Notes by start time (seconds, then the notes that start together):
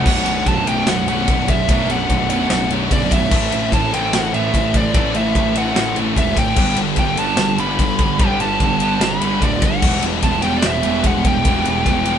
Already playing: F#5
0.04 B0 B1 F#2 B2 F#3 B3 D4 F#4 B4 D5, kick, crash
0.15 B1 F#2
0.22 B0 B1 F#2, ride
0.30 B1 F#2
0.38 B1 F#2
0.44 B0 B1 F#2 A5, kick, ride
0.53 B1 F#2
0.61 B1 F#2
0.66 B0 B1 F#2 B2 G5, ride
0.70 F#2
0.76 B1 F#2
0.83 B0 B1 F#2
0.87 F#5, snare, ride
0.91 B1 F#2
0.99 B1 F#2
1.07 B0 B1 F#2 B2 F#5, ride
1.15 B1 F#2
1.23 B1 F#2
1.28 B0 B1 F#2, kick, ride
1.38 B1 F#2
1.45 B1 F#2, kick, ride
1.50 B1 E5
1.54 F#2
1.61 B1 F#2
1.68 B0 B1 F#2 B2 F#3 D4, kick, ride
1.73 B1 B2
1.78 F#2
1.85 B1 F#2
1.89 B0 B1 F#2 F#5, ride
2.00 B1 F#2
2.09 B0 B1 F#2, kick, ride
2.16 B1 F#2
2.23 B1 F#2
2.30 B1 F#2 B2 F#5, ride
2.39 B1 F#2
2.47 B0 B1 F#2, snare, ride
2.55 B1 F#2
2.62 B1 F#2
2.69 B0 B1 F#2 B2, ride
2.78 B1 F#2
2.85 B1 F#2
2.91 F#1 B1 F#2 D5, kick, ride
3.01 B1 F#2
3.08 B0 B1 F#2, kick, ride
3.13 E5
3.17 B1 F#2
3.24 B1 F#2
3.30 A1 A2 E3 A3 C4 E4 A4 C5, kick, crash
3.39 A2 E3
3.47 A2 E3
3.52 A1 A2 E3, ride
3.61 A2 E3
3.69 A1 A2 E3, kick
3.73 E3 A5, ride
3.78 A2
3.85 A2 E3
3.92 A1 A2 E3 G5, ride
3.97 A2 A3
4.01 E3
4.08 A2 E3
4.13 A1 A2 E3 F#5, snare, ride
4.23 A2 E3
4.30 A1 A2 E3 E5, ride
4.35 E3 A3
4.39 A2 E3
4.46 A2 E3
4.54 A1 A2 E3, kick, ride
4.61 A2 E3
4.70 A2 E3
4.74 A2 E3 D5, kick, ride
4.85 A2 E3
4.93 A1 A2 E3 A3 C4 E4 A4, kick, ride
5.02 A2 E3
5.09 A2 E3
5.14 A1 A2 E5, ride
5.18 E3
5.25 A2 E3
5.33 A1 A2 E3, kick, ride
5.41 A2 E3
5.48 A2 E3
5.55 A2 E3 A3 F#5, ride
5.64 A2 E3
5.72 A1 A2 E3
5.76 A2 E3, snare, ride
5.86 A2 E3
5.95 A1 A2 E3 A3, ride
6.02 A2 E3
6.10 A2 E3
6.16 E1 A2 E3 E5, kick, ride
6.25 A2 E3
6.33 A2 E3, kick
6.37 A1 A2 G5, ride
6.42 E3
6.49 A2 E3
6.55 G1 G2 D3 G3 B3 D4 G4 A4, kick, crash
6.64 G2 D3
6.71 G2 D3
6.76 G1, ride
6.80 G2 D3
6.87 G2 D3
6.96 G1 G2 D3 G5, kick, ride
7.03 G2 D3
7.11 G2 D3
7.16 G1 G2 D3 G3 A5, ride
7.26 G2 D3
7.33 G1 G2 D3
7.37 snare, ride
7.41 G2 D3
7.49 G2 D3
7.56 G1 G2 D3 G3, ride
7.60 G2 B5
7.65 D3
7.72 G2 D3
7.78 G1 G2 D3, kick, ride
7.88 G2 D3
7.95 G2 D3, kick, ride
8.03 G2 D3
8.11 G2 D3
8.19 G1 G2 D3 G3 B3 D4 G4 G5, kick, ride
8.28 G2 D3
8.36 G2 D3
8.40 G1 G2 D3 A5, ride
8.50 G2 D3
8.58 G1 G2 D3, kick, ride
8.67 G2 D3
8.75 G2 D3
8.80 G2 D3 G3, ride
8.89 G2 D3
8.98 G1 G2 D3, snare, ride
9.04 G2 D3 B5
9.13 G2 D3
9.21 G1 G2 D3 G3, ride
9.28 G2 D3
9.36 G2 D3
9.41 D1 G2 D3 D5, kick, ride
9.51 G2 D3
9.59 G1 G2 D3, kick, ride
9.63 G2 D3 F#5
9.75 G2 D3
9.81 E1 E2 B2 E3 G3 B3 E4 G4, kick, crash
9.88 E2 B2
9.96 E2 B2
10.02 E1 E2, ride
10.06 B2
10.12 E2 B2
10.21 E1 E2 B2 A5, kick, ride
10.27 E2 B2
10.36 E2 B2
10.42 E1 E2 B2 E3 G5, ride
10.50 E2 B2
10.56 E2 B2 D5
10.62 E1, snare, ride
10.67 E2 B2 E5
10.73 E2 B2
10.82 E1 E2 B2 E3, ride
10.90 E2 B2
10.97 E2 B2
11.04 E1 E2 B2 F#5, kick, ride
11.13 E2 B2
11.20 E2 B2
11.25 G5, kick, ride
11.29 E2 B2
11.36 E2 B2
11.45 E1 E2 B2 E3 G3 B3 E4, kick, ride
11.53 E2 B2
11.60 E2 B2
11.65 E1 E2 B2, ride
11.77 E2 B2
11.84 E1 E2 B2, kick, ride
11.91 E2 B2
12.00 E2 B2
12.05 E2 B2 E3, ride
12.14 E2